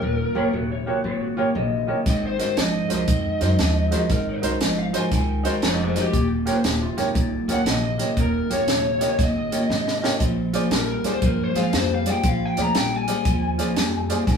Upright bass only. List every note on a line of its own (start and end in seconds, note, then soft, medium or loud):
0.02 0.24 D#1 medium
0.35 0.47 G1 medium
0.53 0.87 D#1 medium
1.04 1.38 G#1 medium
1.55 1.89 A#1 medium
2.06 2.40 G#1 medium
2.57 2.79 G#1 medium
2.90 3.02 C#2 medium
3.08 3.30 F2 medium
3.41 3.53 F#2 medium
3.59 3.93 D#2 loud
4.10 4.32 G#1 medium
4.43 4.55 C2 medium
4.61 4.95 G#1 medium
5.12 5.45 C#2 medium
5.62 5.96 F1 loud
6.13 6.47 D#1 medium
6.64 6.86 D#1 medium
6.97 7.09 G#1 medium
7.15 7.37 C2 loud
7.48 7.60 C#2 medium
7.66 7.99 A#1 medium
8.17 8.39 D#1 medium
8.50 8.62 G1 medium
8.68 9.01 D#1 medium
9.19 9.53 G#1 medium
9.70 10.03 G#1 loud
10.20 10.54 A#1 medium
10.71 10.93 A#1 medium
11.04 11.16 D#2 medium
11.22 11.44 G2 loud
11.55 11.67 G#2 medium
11.73 12.07 F2 loud
12.24 12.46 A#1 medium
12.58 12.69 D2 medium
12.75 13.09 A#1 medium
13.25 13.59 D#2 medium
13.77 14.10 F2 loud
14.27 14.37 G#1 medium